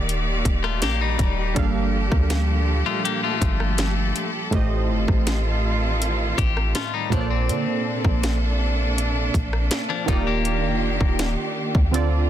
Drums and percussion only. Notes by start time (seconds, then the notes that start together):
0.09 closed hi-hat
0.45 kick, closed hi-hat
0.64 cross-stick
0.82 snare, closed hi-hat
1.19 kick, closed hi-hat
1.56 kick, closed hi-hat
2.12 kick, cross-stick
2.30 snare, closed hi-hat
3.05 closed hi-hat
3.42 kick, closed hi-hat
3.60 cross-stick
3.78 snare, closed hi-hat
4.16 closed hi-hat
4.53 kick, closed hi-hat
5.08 kick, cross-stick
5.27 snare, closed hi-hat
6.02 closed hi-hat
6.38 kick, closed hi-hat
6.57 cross-stick
6.75 snare, closed hi-hat
7.12 kick, closed hi-hat
7.49 closed hi-hat
8.05 kick, cross-stick
8.23 snare, closed hi-hat
8.98 closed hi-hat
9.34 kick, closed hi-hat
9.53 cross-stick
9.71 snare, closed hi-hat
10.08 kick, closed hi-hat
10.45 closed hi-hat
11.01 kick
11.19 snare, closed hi-hat
11.75 kick
11.94 closed hi-hat